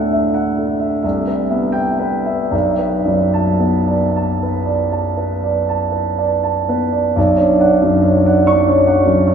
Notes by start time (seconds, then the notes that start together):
Already playing: D2 A2 D4 A4 E5 F#5
0.13 E5
0.34 F#5
0.57 A4
0.80 E5
1.03 C2 E5
1.27 B4
1.50 B3 E5
1.72 G5
1.99 B4
2.26 E5
2.51 B1 D5
2.79 B4
3.05 F#2 D5
3.34 A5
3.59 B3 B4
3.87 D5
4.16 A5
4.43 B4
4.66 D5
4.92 A5
5.17 B4
5.44 D5
5.69 A5
5.92 B4
6.18 D5
6.44 A5
6.68 B3 B4
6.92 D5
7.16 B1 D5
7.38 D4 C#5
7.60 D5 F#5
7.82 F#2
8.04 C#5
8.25 D5 F#5
8.47 D4 C#6
8.67 C#4 C#5
8.87 D4 D5 F#5
9.06 F#2
9.27 C#5